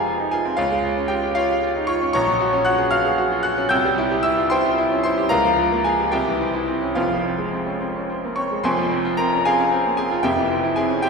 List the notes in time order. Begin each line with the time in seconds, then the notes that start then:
Already playing: F1 F2 G#3 C4 F4 G4 G#4 A#4 C5 F5 G#5 A#5 C6
0.07 F4
0.20 D#4
0.31 F4 G#4 G#5
0.45 C4
0.57 C#2 F4 C#5 F5
0.71 G#3
0.85 F4
0.97 C#4
1.08 F4 G4 G5
1.23 G4
1.35 F4 C#5 F5
1.49 G4
1.63 F4
1.76 D#4
1.87 F4 C#5 C#6
2.02 C#4
2.13 A#1 C#5 A#5 C#6
2.27 F#3
2.41 F#4
2.53 C#4
2.65 F#4 F#5 F#6
2.78 G#4
2.91 F#4 F5 F6
3.05 G#4
3.18 F#4
3.32 F4
3.43 F#4 F#5 F#6
3.58 C#4
3.69 C2 G5 E6 G6
3.85 G3
3.98 E4
4.12 G4
4.23 E4 E5 E6
4.37 F4
4.50 E4 C5 G5 C6
4.64 F4
4.78 E4
4.92 C#4
5.03 E4 C5 C6
5.18 G4
5.29 C#2 A#4 F5 A#5
5.45 F3
5.58 F4
5.72 A#3
5.84 F4 G#4 G#5
6.00 G4
6.12 C2 G4 E5 G5
6.27 E3
6.41 C4
6.54 E4
6.68 C4
6.82 C#4
6.95 F1 F2 F4 C5 F5
7.11 F3
7.25 C4
7.38 G#3
7.53 C4
7.66 C#4
7.81 C4
7.95 C#4
8.10 C4
8.24 A#3
8.36 C4 C#5 C#6
8.51 G#3
8.63 F1 F2 C5 G#5 C6
8.78 F3
8.91 C4
9.05 F4
9.17 C4 A#4 A#5
9.33 C#4
9.45 C4 G#4 F5 G#5
9.59 C#4
9.72 C4
9.85 A#3
9.97 C4 G#4 G#5
10.11 F4
10.23 F1 F2 G4 E5 G5
10.38 E3
10.51 C4
10.64 E4
10.76 C4 G#4 G#5
10.90 C#4
11.02 C4 G4 E5 G5